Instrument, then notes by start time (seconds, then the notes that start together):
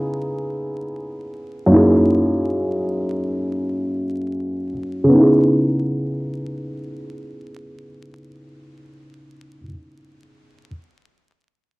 felt piano
Already playing: C#3 B3 D#4 E4 G#4
1.66 F#2 A#3
1.71 D#4 E4
1.76 G#4
5.04 C#3
5.09 B3
5.13 D#4
5.18 E4
5.23 G#4